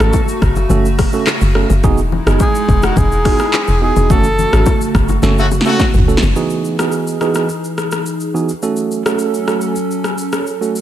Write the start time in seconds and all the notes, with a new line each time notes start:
Already playing: C#3 A3 F#4 A4
0.00 G#1 A3 C#4 F#4 A4, cross-stick, shaker
0.13 kick, high bongo, shaker
0.28 shaker
0.42 F#1, kick, cross-stick, low bongo, shaker
0.56 high bongo, low bongo, shaker
0.69 F#1 A3 C#4 F#4 A4, low conga, shaker
0.85 shaker
0.99 kick, cross-stick, open hi-hat, low bongo, shaker
1.12 A3 C#4 F#4 A4, shaker
1.27 cross-stick, clap, high bongo, shaker
1.41 F#1, shaker
1.55 A3 C#4 F#4 A4, cross-stick
1.70 F#1, low bongo, shaker
1.83 E1 G#3 B3 D#4 E4 F#4 G#4, kick, low conga, shaker
1.98 shaker
2.12 high bongo, low conga
2.26 F#1 B3 D#4 F#4 G#4, cross-stick, shaker
2.40 G#4, kick, high bongo, shaker
2.55 shaker
2.69 E1, kick, low bongo, shaker
2.82 F#4, cross-stick, high bongo, low bongo, shaker
2.96 E1 G#4, kick, low conga, shaker
3.12 shaker
3.25 B3 D#4 F#4 G#4, kick, cross-stick, open hi-hat, low bongo, shaker
3.39 cross-stick, shaker
3.53 clap, high bongo, shaker
3.67 E1, shaker
3.81 B3 D#4 F#4 G#4
3.96 E1, low bongo, shaker
4.10 F#1 C#3 A3 C#4 F#4 A4, kick, low conga, shaker
4.24 shaker
4.39 low conga, shaker
4.53 G#1 A3 C#4 F#4 A4, cross-stick, shaker
4.66 kick, high bongo, shaker
4.81 shaker
4.95 F#1, kick, cross-stick, low bongo, shaker
5.08 high bongo, low bongo, shaker
5.22 F#1 A3 C#4 F#4 A4, snare, low conga, shaker
5.38 C#3 A3 F#4, shaker
5.51 low bongo, shaker
5.61 snare
5.65 C#3 A3 C#4 F#4 A4, shaker
5.80 kick, snare, high bongo, shaker
5.94 F#1, shaker
5.98 floor tom
6.08 A3 C#4 F#4 A4, shaker
6.17 snare
6.22 F#1, low bongo, shaker
6.36 E3 B3 D#4 F#4 G#4, shaker
6.50 shaker
6.65 shaker
6.79 E3 B3 D#4 F#4 G#4, cross-stick, shaker
6.92 shaker
7.07 shaker
7.21 E3 B3 D#4 F#4 G#4, cross-stick, shaker
7.35 cross-stick, shaker
7.49 shaker
7.64 shaker
7.78 cross-stick, shaker
7.92 cross-stick, shaker
8.06 shaker
8.20 shaker
8.34 E3 B3 D#4 F#4 G#4, shaker
8.49 shaker
8.62 F#3 A3 C#4 F#4 A4, shaker
8.76 shaker
8.91 shaker
9.05 A3 C#4 F#4 A4, cross-stick, shaker
9.19 shaker
9.34 shaker
9.47 A3 C#4 F#4 A4, cross-stick, shaker
9.61 shaker
9.76 shaker
9.91 shaker
10.04 cross-stick, shaker
10.18 shaker
10.33 cross-stick, shaker
10.47 shaker
10.61 A3 C#4 F#4 A4, shaker
10.76 shaker